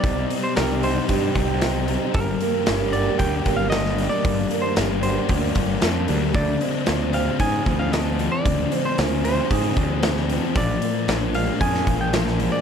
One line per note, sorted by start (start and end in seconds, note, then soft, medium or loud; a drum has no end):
0.00 0.24 C2 medium
0.00 1.35 C3 medium
0.00 0.56 G3 medium
0.00 1.36 G3 medium
0.00 0.29 C4 medium
0.00 0.30 D#4 medium
0.00 0.81 D#4 medium
0.00 0.83 D#4 medium
0.00 0.56 G4 medium
0.00 0.83 G4 medium
0.00 1.09 G4 medium
0.00 0.39 D5 loud
0.00 kick loud
0.00 open hi-hat medium
0.04 1.35 G3 medium
0.30 0.82 C4 medium
0.30 1.62 C4 medium
0.30 1.08 C4 medium
0.30 open hi-hat medium
0.43 0.56 C5 medium
0.56 0.97 C2 medium
0.56 1.89 G3 medium
0.56 1.08 D#4 medium
0.56 2.68 G4 medium
0.56 0.83 A#4 medium
0.56 snare loud
0.56 open hi-hat medium
0.83 1.35 C4 medium
0.83 1.87 D#4 medium
0.83 2.94 G4 medium
0.83 1.84 C5 medium
0.83 open hi-hat medium
1.09 1.30 G2 medium
1.09 1.61 C4 medium
1.09 2.15 D#4 medium
1.09 3.20 G4 medium
1.09 kick medium
1.09 open hi-hat medium
1.35 1.96 C2 medium
1.35 4.86 G3 medium
1.35 1.88 G3 medium
1.35 2.15 C4 medium
1.35 kick medium
1.35 open hi-hat medium
1.62 2.14 C4 medium
1.62 2.15 C4 medium
1.62 2.15 D#4 medium
1.62 snare loud
1.62 open hi-hat medium
1.88 3.47 G3 medium
1.88 2.67 G3 medium
1.88 2.14 D#4 medium
1.88 open hi-hat soft
2.14 2.35 G1 loud
2.14 3.46 G2 medium
2.14 3.47 G2 medium
2.14 2.40 A#3 medium
2.14 2.96 A#4 medium
2.14 kick loud
2.14 open hi-hat medium
2.41 3.19 A#3 medium
2.41 3.72 A#3 medium
2.41 2.94 A#3 medium
2.41 open hi-hat medium
2.66 3.08 G1 medium
2.66 3.97 G3 medium
2.66 3.20 D4 medium
2.66 3.99 G4 medium
2.66 snare loud
2.66 open hi-hat medium
2.93 3.45 A#3 medium
2.93 4.25 G4 medium
2.93 3.19 D5 medium
2.93 open hi-hat medium
3.19 3.40 D2 medium
3.19 3.46 A#3 medium
3.19 4.77 D4 medium
3.19 4.51 G4 medium
3.19 3.56 G5 loud
3.19 kick medium
3.19 open hi-hat medium
3.46 4.06 G1 medium
3.46 3.98 G3 medium
3.46 4.49 A#3 medium
3.46 3.72 A#3 medium
3.46 kick medium
3.46 open hi-hat medium
3.57 3.69 F5 medium
3.70 4.50 A#3 medium
3.70 4.25 A#3 medium
3.70 5.82 D4 medium
3.70 4.09 D#5 medium
3.70 snare medium
3.70 open hi-hat medium
3.86 snare soft
3.98 4.75 G3 medium
3.98 5.30 G3 medium
3.98 5.03 D4 medium
3.98 open hi-hat medium
4.10 4.65 D5 medium
4.25 4.45 G1 medium
4.25 5.56 G2 medium
4.25 5.57 G2 medium
4.25 4.50 A#3 medium
4.25 kick loud
4.25 open hi-hat medium
4.50 5.02 A#3 medium
4.50 5.28 A#3 medium
4.50 5.81 A#3 medium
4.50 open hi-hat medium
4.62 4.76 C5 medium
4.76 5.18 G1 medium
4.76 6.07 G3 medium
4.76 5.30 D4 medium
4.76 6.09 G4 medium
4.76 5.02 A#4 medium
4.76 snare loud
4.76 open hi-hat medium
5.03 5.55 A#3 medium
5.03 6.08 D4 medium
5.03 6.35 G4 medium
5.03 6.04 C5 medium
5.03 open hi-hat medium
5.29 5.50 D2 medium
5.29 5.55 A#3 medium
5.29 6.64 D4 medium
5.29 6.35 G4 medium
5.29 kick medium
5.29 open hi-hat medium
5.55 5.76 G1 medium
5.55 6.08 G3 medium
5.55 6.35 A#3 medium
5.55 5.81 A#3 medium
5.55 kick medium
5.55 open hi-hat medium
5.82 6.06 F2 medium
5.82 6.35 A#3 medium
5.82 6.64 D4 medium
5.82 snare loud
5.82 open hi-hat medium
6.08 6.33 D2 medium
6.08 6.35 G3 medium
6.08 6.64 D4 medium
6.08 open hi-hat medium
6.34 6.55 D2 medium
6.34 7.66 D3 medium
6.34 7.67 D3 medium
6.34 7.66 F3 medium
6.34 7.16 D5 medium
6.34 kick loud
6.34 open hi-hat medium
6.61 7.40 G#3 medium
6.61 7.13 C4 medium
6.61 7.92 C4 medium
6.61 open hi-hat medium
6.86 7.28 D2 medium
6.86 8.18 F3 medium
6.86 7.40 D4 medium
6.86 8.97 G#4 medium
6.86 snare loud
6.86 open hi-hat medium
7.13 8.17 C4 medium
7.13 7.65 C4 medium
7.13 8.48 G#4 medium
7.13 7.40 F5 medium
7.13 open hi-hat medium
7.40 7.60 G#2 medium
7.40 7.92 G#3 medium
7.40 8.75 D4 medium
7.40 9.51 G#4 medium
7.40 7.79 G#5 loud
7.40 kick medium
7.40 open hi-hat medium
7.66 8.27 D2 medium
7.66 8.44 F3 medium
7.66 8.19 F3 medium
7.66 8.71 C4 medium
7.66 kick medium
7.66 open hi-hat soft
7.79 7.92 F5 medium
7.92 8.71 G#3 medium
7.92 8.71 C4 medium
7.92 9.28 D4 medium
7.92 8.31 D#5 medium
7.92 snare loud
7.92 open hi-hat medium
8.18 8.98 F3 medium
8.18 9.76 F3 medium
8.18 9.23 C4 medium
8.18 open hi-hat medium
8.32 8.86 D5 loud
8.45 8.66 D2 medium
8.45 9.77 D3 medium
8.45 9.76 F3 medium
8.45 kick loud
8.45 open hi-hat medium
8.72 9.50 G#3 medium
8.72 10.02 C4 medium
8.72 9.24 C4 medium
8.72 open hi-hat medium
8.85 8.98 C5 medium
8.97 9.39 D2 medium
8.97 10.30 F3 medium
8.97 9.50 D4 medium
8.97 11.11 G#4 medium
8.97 9.24 A#4 medium
8.97 snare loud
8.97 open hi-hat medium
9.24 10.28 C4 medium
9.24 9.77 C4 medium
9.24 10.59 G#4 medium
9.24 9.96 C5 medium
9.24 open hi-hat medium
9.50 9.71 G#2 medium
9.50 10.02 G#3 medium
9.50 11.08 D4 medium
9.50 10.60 G#4 medium
9.50 kick medium
9.50 open hi-hat medium
9.76 10.37 D2 medium
9.76 10.54 F3 medium
9.76 10.29 F3 medium
9.76 10.56 C4 medium
9.76 kick medium
9.76 open hi-hat medium
9.96 10.26 A#4 medium
10.03 11.11 G#3 medium
10.03 10.56 C4 medium
10.03 11.64 D4 medium
10.03 snare loud
10.03 open hi-hat medium
10.17 snare soft
10.29 11.86 F3 medium
10.29 11.09 F3 medium
10.29 10.56 C4 medium
10.29 open hi-hat medium
10.55 10.76 A#1 loud
10.55 12.61 A#2 medium
10.55 10.82 F3 medium
10.55 11.35 D5 medium
10.55 kick loud
10.55 open hi-hat medium
10.82 11.61 F3 medium
10.82 11.35 A#3 medium
10.82 12.13 A#3 medium
10.82 open hi-hat medium
11.08 11.49 A#1 medium
11.08 12.41 F3 medium
11.08 12.43 D4 medium
11.08 11.59 D4 medium
11.08 snare loud
11.08 open hi-hat medium
11.34 12.39 G#3 medium
11.34 11.88 A#3 medium
11.34 12.61 G#4 medium
11.34 11.61 F5 medium
11.34 open hi-hat medium
11.60 11.81 F2 medium
11.60 11.86 F3 medium
11.60 12.61 D4 medium
11.60 12.61 G#4 medium
11.60 12.01 G#5 loud
11.60 kick medium
11.60 open hi-hat medium
11.74 snare soft
11.87 12.48 A#1 loud
11.87 12.12 F3 medium
11.87 12.38 F3 medium
11.87 12.61 A#3 medium
11.87 kick medium
11.87 open hi-hat medium
12.01 12.14 G5 medium
12.13 12.61 F3 medium
12.13 12.61 A#3 medium
12.13 12.61 D4 medium
12.13 12.52 F5 medium
12.13 snare loud
12.13 open hi-hat medium
12.27 snare soft
12.39 12.61 F3 medium
12.39 12.61 G#3 medium
12.39 open hi-hat medium
12.52 12.61 D5 medium